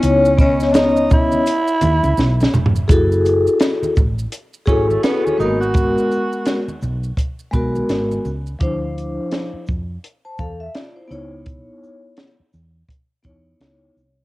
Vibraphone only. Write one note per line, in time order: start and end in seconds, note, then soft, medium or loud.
0.00 0.26 B3 medium
0.00 0.27 D#4 medium
0.00 0.28 E4 medium
0.00 0.28 C#5 medium
0.37 1.38 B3 medium
0.37 1.39 C#4 medium
0.37 1.40 C#5 medium
0.37 1.39 D#5 medium
2.88 3.89 E4 medium
2.88 3.89 F#4 medium
2.88 3.88 G#4 medium
2.88 3.90 A4 medium
4.66 5.39 E4 medium
4.66 5.39 F#4 medium
4.66 5.38 G#4 medium
4.66 5.40 A4 medium
5.38 6.54 G#3 medium
5.38 5.47 A#3 medium
5.38 6.55 F#4 medium
5.38 6.56 A#4 medium
5.45 6.58 B3 medium
7.51 8.26 G#3 medium
7.51 8.27 B3 medium
7.51 8.28 F#4 medium
7.56 8.28 A#4 medium
8.59 9.59 F3 medium
8.59 9.60 D4 medium
8.59 9.60 E4 medium
8.59 9.61 C5 medium
10.25 10.39 C5 soft
10.25 10.38 A5 medium
10.39 10.60 A4 medium
10.39 10.59 F5 medium
10.60 10.74 E5 medium
10.75 10.95 F4 soft
10.75 10.95 D5 medium
10.96 11.10 E4 soft
10.96 11.30 C5 medium
11.08 12.25 B3 medium
11.08 12.26 D#4 medium
11.08 12.26 E4 medium
11.08 12.27 C#5 medium
13.22 13.97 B3 medium
13.22 13.98 D#4 medium
13.22 13.99 E4 medium
13.22 13.99 C#5 medium